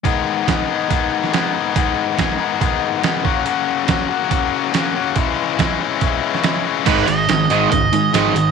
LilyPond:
<<
  \new Staff \with { instrumentName = "Lead electric guitar" } { \time 4/4 \key gis \minor \tempo 4 = 141 r1 | r1 | r1 | r1 |
b'8 dis''4. dis''2 | }
  \new Staff \with { instrumentName = "Distorted electric guitar" } { \clef bass \time 4/4 \key gis \minor <gis, dis gis b dis' gis'>4 <gis, dis gis b dis' gis'>8 <gis, dis gis b dis' gis'>8 <gis, dis gis b dis' gis'>4 <gis, dis gis b dis' gis'>8 <gis, dis gis b dis' gis'>8 | <gis, dis gis b dis' gis'>4 <gis, dis gis b dis' gis'>8 <gis, dis gis b dis' gis'>8 <gis, dis gis b dis' gis'>4 <gis, dis gis b dis' gis'>8 <fis, cis fis ais cis' fis'>8 | <fis, cis fis ais cis' fis'>4 <fis, cis fis ais cis' fis'>8 <fis, cis fis ais cis' fis'>8 <fis, cis fis ais cis' fis'>4 <fis, cis fis ais cis' fis'>8 <fis, cis fis ais cis' fis'>8 | <cis e gis cis' e'>4 <cis e gis cis' e'>8 <cis e gis cis' e'>8 <cis e gis cis' e'>4 <cis e gis cis' e'>8 <cis e gis cis' e'>8 |
<gis, dis gis>8 <gis, dis>8 <gis, dis>8 <gis, dis gis>8 <gis, dis>8 <gis, dis>8 <gis, dis gis>8 <gis, dis>8 | }
  \new Staff \with { instrumentName = "Overdriven electric guitar" } { \clef bass \time 4/4 \key gis \minor r1 | r1 | r1 | r1 |
<gis, dis gis>8 <gis, dis>8 <gis, dis>8 <gis, dis gis>8 <gis, dis>8 <gis, dis>8 <gis, dis gis>8 <gis, dis>8 | }
  \new Staff \with { instrumentName = "Picked electric bass" } { \clef bass \time 4/4 \key gis \minor r1 | r1 | r1 | r1 |
gis,,8 gis,,8 gis,,8 gis,,8 cis,8 gis,8 gis,,8 gis,,8 | }
  \new DrumStaff \with { instrumentName = "Drums" } \drummode { \time 4/4 <hh bd>4 <hh bd sn>4 <hh bd>8. sn16 <hh sn>4 | <hh bd>4 <hh bd sn>4 <hh bd>4 <hh sn>8 bd8 | hh4 <hh bd sn>4 <hh bd>4 <hh sn>4 | <hh bd>4 <hh bd sn>4 <hh bd>8. sn16 <hh sn>4 |
<cymc hh bd>8 hh8 <hh sn>8 hh8 <hh bd>8 hh8 <hh sn>8 hh8 | }
>>